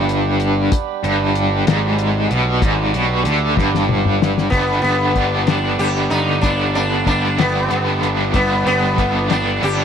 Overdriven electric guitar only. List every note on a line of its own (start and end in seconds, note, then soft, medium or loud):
0.00 0.71 G2 loud
1.03 1.66 G2 medium
1.67 2.29 G#2 loud
2.30 2.61 B2 loud
2.62 2.93 G#2 medium
2.93 3.24 B2 loud
3.25 3.56 D3 medium
3.56 4.50 G2 loud
4.51 5.49 G2 medium
4.51 5.13 D3 medium
4.51 5.15 G3 medium
4.51 5.15 B3 medium
4.51 5.16 D4 medium
5.15 5.47 D3 medium
5.15 5.48 G3 medium
5.15 5.47 B3 medium
5.15 5.46 D4 medium
5.47 6.41 G2 medium
5.47 5.77 D3 medium
5.47 5.78 G3 medium
5.47 5.79 B3 medium
5.47 5.79 D4 medium
5.78 6.41 D3 medium
5.78 6.42 G3 medium
5.78 6.43 B3 medium
5.78 6.43 D4 medium
6.41 7.39 G2 medium
6.41 7.04 D3 medium
6.41 7.06 G3 medium
6.41 7.06 B3 medium
6.41 7.07 D4 medium
7.05 7.38 D3 medium
7.05 7.38 G3 medium
7.05 7.38 B3 medium
7.05 7.37 D4 medium
7.37 8.33 G2 medium
7.37 7.68 D3 medium
7.37 7.69 G3 medium
7.37 7.70 B3 medium
7.37 7.71 D4 medium
7.69 8.33 D3 medium
7.69 8.34 G3 medium
7.69 8.34 B3 medium
7.69 8.35 D4 medium
8.33 9.30 G2 medium
8.33 8.96 D3 medium
8.33 8.98 G3 medium
8.33 8.98 B3 medium
8.33 8.99 D4 medium
8.97 9.29 D3 medium
8.97 9.29 G3 medium
8.97 9.28 B3 medium
8.97 9.28 D4 medium
9.29 9.85 G2 medium
9.29 9.60 D3 medium
9.29 9.61 G3 medium
9.29 9.61 B3 medium
9.29 9.63 D4 medium
9.61 9.85 D3 medium
9.61 9.85 G3 medium
9.61 9.85 B3 medium
9.61 9.85 D4 medium